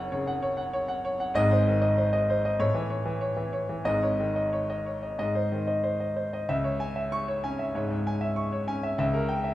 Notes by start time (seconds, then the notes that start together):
Already playing: F#1 F#2 C#3 C#5 F#5
0.12 C#3 C#5
0.27 F#5
0.42 C#5
0.57 F#5
0.73 C#5
0.88 F#5
1.05 C#5
1.20 F#5
1.34 G#1 G#2 D#5
1.51 C5
1.67 D#3
1.82 D#5
1.98 C5
2.13 D#5
2.30 C5
2.45 D#5
2.60 A2 C#5
2.74 E3
2.90 C#5
3.05 E3
3.21 C#5
3.37 E3
3.53 C#5
3.69 E3
3.84 G#1 G#2 D#5
4.03 C#5
4.20 D#3
4.36 D#5
4.53 C#5
4.70 D#5
4.86 C#5
5.03 D#5
5.19 G#2 D#5
5.35 C5
5.52 D#3
5.67 D#5
5.83 C5
6.00 D#5
6.16 C5
6.33 D#5
6.49 C#2 E5
6.64 C#5
6.80 G#5
6.96 E5
7.12 C#6
7.28 C#5
7.44 C#4 G#5
7.59 E5
7.75 G#2 C#5
7.90 G#2
8.07 G#5
8.21 E5
8.36 C#6
8.52 C#5
8.67 C#4 G#5
8.83 E5
8.98 C#2 E5
9.14 A#4
9.29 G5
9.44 E5